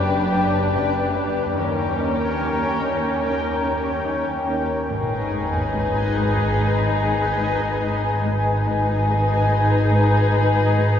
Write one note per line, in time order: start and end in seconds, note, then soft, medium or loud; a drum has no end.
0.00 1.53 F#1 soft
0.00 0.16 F#2 soft
0.00 1.54 F#2 soft
0.00 1.54 D4 soft
0.00 1.53 G4 soft
0.00 1.57 B4 soft
0.00 1.58 B4 soft
0.00 1.57 D5 soft
0.00 1.56 G5 soft
0.32 0.57 F#2 soft
0.75 1.00 F#2 soft
1.16 1.41 F#3 soft
1.57 4.67 D#2 soft
1.57 1.83 D#3 soft
1.57 4.71 C#4 soft
1.57 4.67 G4 soft
1.57 4.91 A#4 soft
1.57 4.72 A#4 soft
1.57 4.91 C#5 soft
1.57 4.87 G5 soft
2.00 2.25 D#4 soft
2.41 2.66 D#3 soft
2.83 3.08 D#3 soft
3.24 3.49 D#3 soft
3.66 3.91 D#3 soft
4.07 4.32 D#3 soft
4.49 4.74 D#4 soft
4.88 8.20 G#1 soft
4.88 5.16 G#2 soft
4.88 8.20 G#2 soft
4.88 8.21 D#4 soft
4.88 8.19 G#4 soft
4.88 8.20 B4 soft
4.88 8.21 B4 soft
4.88 8.21 D#5 soft
4.88 8.21 G#5 soft
4.88 sub drop soft
5.32 5.57 G#2 soft
5.74 5.99 G#3 soft
6.16 6.41 G#3 soft
6.56 6.82 G#2 soft
6.98 7.24 G#3 soft
7.41 7.66 G#3 soft
7.82 8.07 G#2 soft
8.23 11.00 G#1 soft
8.23 8.49 G#2 soft
8.23 11.00 G#2 soft
8.23 11.00 D#4 soft
8.23 11.00 G#4 soft
8.23 11.00 B4 soft
8.23 11.00 D#5 soft
8.23 11.00 G#5 soft
8.67 8.91 G#2 soft
9.07 9.33 G#3 soft
9.49 9.74 G#3 soft
9.91 10.16 G#2 soft
10.33 10.58 G#3 soft
10.75 11.00 G#3 soft